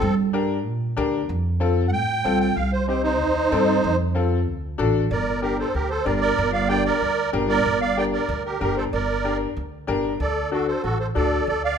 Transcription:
0.00 0.65 G2 loud
0.00 0.13 C4 medium
0.00 0.15 A4 loud
0.33 0.56 D4 medium
0.33 0.56 G4 medium
0.33 0.56 A#4 loud
0.65 0.91 A#2 loud
0.97 1.23 D2 loud
0.97 1.19 D4 medium
0.97 1.19 G4 medium
0.97 1.20 A#4 loud
1.29 1.93 F2 loud
1.60 1.83 C4 medium
1.60 1.83 F4 medium
1.60 1.83 A4 medium
1.88 1.91 F#5 medium
1.93 2.19 A2 loud
1.93 2.39 G5 loud
2.24 2.50 C2 loud
2.24 2.47 C4 medium
2.24 2.47 F4 medium
2.24 2.47 A4 medium
2.40 2.56 G5 medium
2.56 3.20 C2 loud
2.56 2.72 F5 medium
2.72 2.86 C5 medium
2.88 3.10 C4 medium
2.88 3.10 D#4 medium
2.88 3.11 G4 medium
2.88 3.02 C5 medium
3.03 3.95 D#4 medium
3.03 3.97 C5 loud
3.20 3.46 D#2 loud
3.51 3.77 G2 loud
3.51 3.74 C4 medium
3.51 3.74 D#4 medium
3.51 3.74 A4 loud
3.84 4.47 F2 loud
4.15 4.37 C4 medium
4.15 4.38 F4 medium
4.15 4.38 A4 medium
4.47 4.73 D2 loud
4.78 5.05 A1 loud
4.78 5.01 D4 medium
4.78 5.01 F#4 medium
4.78 5.01 A4 loud
5.11 5.62 G1 loud
5.11 5.41 A#4 medium
5.11 5.41 D5 medium
5.42 5.65 D4 medium
5.42 5.65 G4 medium
5.42 5.58 G4 medium
5.42 5.57 A#4 medium
5.42 5.65 A#4 medium
5.59 5.74 A4 medium
5.59 5.74 C5 medium
5.74 6.00 D2 medium
5.74 5.90 G4 medium
5.74 5.89 A#4 medium
5.90 6.05 A4 medium
5.90 6.05 C5 medium
6.05 6.32 G1 loud
6.05 6.28 D4 medium
6.05 6.28 G4 medium
6.05 6.29 A#4 medium
6.05 6.21 A#4 medium
6.05 6.19 D5 medium
6.21 6.52 A#4 medium
6.21 6.51 D5 loud
6.38 6.89 G1 loud
6.53 6.68 D5 medium
6.53 6.68 F5 loud
6.69 6.92 D4 medium
6.69 6.92 G4 medium
6.69 6.92 A#4 medium
6.69 6.84 D5 medium
6.69 6.84 G5 loud
6.85 7.31 A#4 medium
6.85 7.30 D5 loud
7.02 7.27 D2 medium
7.33 7.59 G1 loud
7.33 7.56 D4 medium
7.33 7.56 G4 medium
7.33 7.56 A#4 loud
7.49 7.80 A#4 medium
7.49 7.81 D5 loud
7.65 8.16 G1 loud
7.81 7.97 D5 medium
7.81 7.98 F5 loud
7.97 8.19 D4 medium
7.97 8.20 G4 medium
7.97 8.20 A#4 medium
7.97 8.06 D5 medium
7.97 8.05 G5 medium
8.13 8.43 A#4 medium
8.13 8.43 D5 medium
8.29 8.54 D2 loud
8.45 8.60 G4 medium
8.45 8.59 A#4 medium
8.60 8.86 G1 loud
8.60 8.83 D4 medium
8.60 8.83 G4 medium
8.60 8.76 G4 medium
8.60 8.75 A#4 medium
8.60 8.83 A#4 medium
8.77 8.84 A4 medium
8.77 8.84 C5 medium
8.93 9.44 G1 loud
8.93 9.38 A#4 medium
8.93 9.37 D5 medium
9.24 9.47 D4 medium
9.24 9.47 G4 medium
9.24 9.47 A#4 medium
9.57 9.82 D2 medium
9.87 10.13 G1 loud
9.87 10.10 D4 medium
9.87 10.10 G4 medium
9.87 10.11 A#4 loud
10.20 10.71 D2 medium
10.20 10.50 A4 medium
10.20 10.50 D5 medium
10.51 10.74 D4 medium
10.51 10.74 F#4 medium
10.51 10.67 F#4 medium
10.51 10.66 A4 medium
10.51 10.74 A4 medium
10.68 10.82 A4 medium
10.68 10.83 C5 medium
10.83 11.09 A1 medium
10.83 10.98 F#4 medium
10.83 10.98 A4 medium
11.00 11.07 A4 medium
11.00 11.07 C5 medium
11.15 11.41 D2 medium
11.15 11.37 D4 medium
11.15 11.38 F#4 medium
11.15 11.38 A4 medium
11.15 11.45 A4 medium
11.15 11.47 D5 medium
11.47 11.78 D2 loud
11.47 11.62 A4 medium
11.47 11.62 D5 medium
11.64 11.78 D5 medium
11.64 11.78 F5 loud

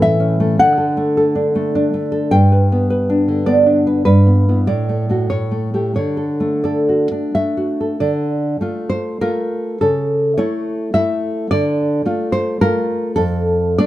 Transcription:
0.00 0.55 A2 medium
0.00 0.59 E3 soft
0.00 0.39 A3 soft
0.00 0.19 C#4 soft
0.00 0.57 E5 medium
0.20 0.58 C#4 soft
0.40 0.59 A3 soft
0.59 2.30 D3 medium
0.59 2.30 F#5 medium
0.78 1.16 A4 soft
0.97 1.54 A3 soft
1.17 2.05 A4 soft
1.35 1.74 D4 soft
1.55 1.93 A3 soft
1.75 2.34 D4 soft
1.94 2.33 A3 soft
2.12 2.32 A4 soft
2.31 4.02 G2 medium
2.31 3.43 G5 medium
2.52 2.89 B4 soft
2.72 3.46 B3 soft
2.90 3.66 B4 soft
3.10 3.65 D4 soft
3.28 4.07 D3 soft
3.46 4.06 B3 soft
3.46 3.75 D5 medium
3.66 4.06 D4 soft
3.87 4.04 B4 soft
4.05 4.66 G2 soft
4.05 4.65 B4 medium
4.27 4.48 B3 soft
4.49 4.67 B3 soft
4.49 4.67 E4 soft
4.67 5.28 A2 soft
4.67 5.27 D5 medium
4.89 5.08 A3 soft
5.09 5.28 A3 soft
5.09 5.29 F#4 soft
5.30 5.94 A2 soft
5.30 5.93 C#5 medium
5.51 5.73 A3 soft
5.74 5.94 A3 soft
5.74 5.94 G4 soft
5.96 7.11 D3 soft
5.96 6.62 C#5 medium
6.17 6.64 A4 soft
6.40 7.34 A3 soft
6.64 7.69 A4 soft
6.64 7.31 D5 soft
6.89 7.56 F#4 soft
7.12 8.00 D4 soft
7.35 8.02 A3 soft
7.35 8.00 E5 medium
7.57 8.02 F#4 soft
7.81 8.02 A4 soft
8.00 8.60 D3 medium
8.00 8.88 D5 medium
8.61 9.20 A3 soft
8.61 9.21 F4 soft
8.90 9.20 C5 medium
9.21 9.77 A3 soft
9.21 9.78 F4 soft
9.21 9.79 A#4 medium
9.81 10.38 C#3 soft
9.81 10.36 A4 medium
10.38 10.93 A3 soft
10.38 10.94 E4 soft
10.38 10.92 C#5 medium
10.94 11.47 A3 soft
10.94 11.47 E4 medium
10.94 11.48 E5 medium
11.51 12.05 D3 medium
11.51 12.30 D5 medium
12.06 12.60 A3 soft
12.06 12.61 F4 soft
12.32 12.59 C5 medium
12.61 13.14 A3 soft
12.61 13.14 F4 soft
12.61 13.15 A#4 medium
13.16 13.78 F2 medium
13.16 13.77 A4 medium
13.78 13.87 A3 soft
13.78 13.87 D4 medium
13.78 13.87 D5 medium

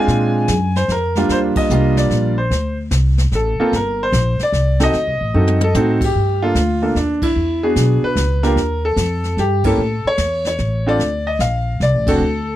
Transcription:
0.00 0.47 G#3 medium
0.00 0.47 C4 medium
0.00 0.47 D4 medium
0.00 0.47 F4 medium
0.00 0.80 G#5 loud
0.08 0.48 A#2 medium
0.08 brush sweep soft
0.08 kick soft
0.08 snare soft
0.48 0.88 F#2 loud
0.48 kick soft
0.48 snare medium
0.48 hi-hat pedal medium
0.76 0.91 C5 medium
0.76 snare soft
0.88 1.28 F2 medium
0.88 1.33 A#4 medium
0.88 kick soft
0.88 snare soft
1.15 1.68 G3 medium
1.15 1.68 A#3 medium
1.15 1.69 D4 medium
1.15 1.69 F4 medium
1.15 snare soft
1.29 1.54 D#2 medium
1.29 1.38 C5 medium
1.29 brush sweep soft
1.29 kick soft
1.29 snare soft
1.55 1.99 D#5 medium
1.55 muted upright bass stroke soft
1.55 kick medium
1.55 crash medium
1.70 2.09 C2 loud
1.70 2.33 G3 medium
1.70 2.33 A#3 medium
1.70 2.33 D4 medium
1.70 2.33 F4 medium
1.70 hi-hat pedal medium
1.97 2.39 D5 medium
1.97 snare medium
2.10 2.50 A#1 medium
2.10 kick soft
2.10 snare soft
2.38 2.76 C5 medium
2.50 2.90 D2 medium
2.50 brush sweep medium
2.50 kick soft
2.50 snare soft
2.91 3.31 C2 loud
2.91 kick soft
2.91 snare medium
2.91 hi-hat pedal medium
3.18 snare soft
3.32 3.57 A1 medium
3.32 3.59 A4 medium
3.32 kick soft
3.32 snare soft
3.59 3.72 A#3 medium
3.59 3.72 C4 medium
3.59 3.72 F4 medium
3.59 3.72 A4 medium
3.59 muted upright bass stroke soft
3.72 4.12 G1 medium
3.72 4.02 A#4 medium
3.72 brush sweep medium
3.72 kick soft
3.72 snare soft
4.03 4.39 C5 medium
4.12 4.38 A#1 loud
4.12 kick soft
4.12 snare medium
4.12 hi-hat pedal medium
4.39 4.83 D5 loud
4.39 muted upright bass stroke soft
4.39 snare soft
4.52 4.92 C2 medium
4.52 kick soft
4.52 snare soft
4.80 4.92 C4 medium
4.80 4.93 D#4 medium
4.80 4.93 F#4 medium
4.80 4.93 A4 medium
4.80 5.72 D#5 loud
4.80 snare medium
4.93 5.07 D2 medium
4.93 brush sweep soft
4.93 kick soft
4.93 snare soft
5.07 5.20 C2 soft
5.21 5.33 A1 medium
5.34 5.74 F#2 medium
5.34 5.59 C4 medium
5.34 5.59 D#4 medium
5.34 5.59 F#4 medium
5.34 5.59 A4 medium
5.47 high tom medium
5.61 5.75 A4 medium
5.61 high tom medium
5.75 6.14 A2 medium
5.75 5.99 C4 medium
5.75 6.00 D#4 medium
5.75 6.00 F#4 medium
5.75 6.00 A4 medium
5.75 hi-hat pedal medium
5.75 high tom medium
6.01 6.41 G4 medium
6.01 kick medium
6.01 crash medium
6.15 6.54 G2 medium
6.15 brush sweep medium
6.42 6.55 A#3 medium
6.42 6.55 D4 medium
6.42 6.81 F4 medium
6.42 6.55 A4 medium
6.55 6.94 D2 medium
6.55 kick soft
6.55 snare medium
6.55 hi-hat pedal medium
6.82 6.95 A#3 medium
6.82 6.95 D4 soft
6.82 6.95 F4 medium
6.82 6.95 A4 medium
6.95 7.35 D#2 medium
6.95 7.24 D4 medium
6.95 kick soft
6.95 snare soft
7.22 7.65 E4 medium
7.22 kick medium
7.22 ride medium
7.36 7.75 E2 medium
7.36 brush sweep soft
7.63 8.15 B3 medium
7.63 8.15 D4 medium
7.63 8.15 F#4 medium
7.63 8.01 G#4 medium
7.76 8.01 B1 medium
7.76 kick soft
7.76 snare medium
7.76 hi-hat pedal medium
8.03 8.46 B4 medium
8.03 muted upright bass stroke soft
8.16 8.55 C#2 medium
8.16 kick soft
8.16 snare medium
8.16 hi-hat pedal medium
8.43 8.56 A#3 medium
8.43 8.56 D4 medium
8.43 8.57 F4 medium
8.43 8.57 G4 medium
8.43 8.81 A#4 medium
8.43 snare soft
8.56 8.96 D#2 medium
8.56 brush sweep soft
8.56 kick soft
8.56 snare soft
8.85 9.41 A4 medium
8.96 9.36 F2 loud
8.96 kick soft
8.96 snare medium
8.96 hi-hat pedal medium
9.24 snare soft
9.37 9.77 G2 medium
9.37 9.64 G4 medium
9.37 kick soft
9.37 snare soft
9.64 9.77 A#3 medium
9.64 9.78 C#4 medium
9.64 9.78 E4 medium
9.64 9.78 G4 medium
9.64 10.08 A4 medium
9.64 kick medium
9.64 ride medium
9.78 10.03 A2 medium
9.78 brush sweep soft
10.05 10.46 C#5 loud
10.05 muted upright bass stroke soft
10.18 10.58 E2 medium
10.18 kick soft
10.18 snare medium
10.18 hi-hat pedal medium
10.45 10.89 C#5 medium
10.45 snare soft
10.58 10.99 A1 medium
10.58 kick soft
10.58 snare soft
10.86 10.99 C4 medium
10.86 10.99 D4 medium
10.86 10.99 F4 medium
10.86 11.00 A4 medium
10.86 11.29 D5 loud
10.99 11.38 D2 medium
10.99 brush sweep soft
10.99 kick soft
10.99 snare soft
11.27 11.41 D#5 medium
11.39 11.79 A#1 medium
11.39 11.82 F5 medium
11.39 kick soft
11.39 snare medium
11.39 hi-hat pedal medium
11.80 11.94 C2 medium
11.80 12.09 D5 medium
11.80 kick soft
11.80 snare soft
11.94 12.06 A1 medium
12.06 12.19 F1 medium
12.06 12.20 C4 medium
12.06 12.20 D4 medium
12.06 12.21 F#4 medium
12.06 12.56 A4 loud
12.06 kick medium
12.06 ride medium
12.20 12.56 D2 medium
12.20 brush sweep soft

